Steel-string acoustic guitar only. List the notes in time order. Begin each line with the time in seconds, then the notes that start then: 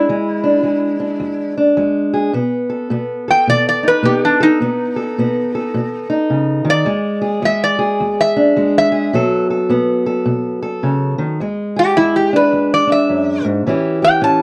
0.09 E2 G#3
0.44 D4
0.63 E2 G#3
1.00 D4
1.20 E2
1.57 D4
1.77 E2 G#3
2.14 G#4
2.33 B2 B3
2.70 A4
2.90 B2 B3
3.28 A4
3.47 B2
3.83 D#4
4.03 B2 B3
4.40 A4
4.61 B2 B3
4.96 A4
5.18 B2 B3
5.55 A4
5.74 B2
6.10 D#4
6.30 C#3
6.65 D#3
6.85 E2 G#3
7.21 G#4
7.42 E2 G#3
7.79 G#4
8.00 E2
8.36 D4
8.56 E2 G#3
8.92 G#4
9.13 B2 F#3 B3 A4
9.50 A4
9.69 B2 B3
10.06 A4
10.26 B2
10.62 A4
10.83 C#3
11.18 D#3
11.40 E2 G#3
11.76 G#4
11.97 E2 G#3
12.33 D4
12.52 E2
12.87 D4
13.09 F#2
13.45 G#2
13.66 A2 E3 C#4 E4 G4
14.02 G4
14.21 A2 C#4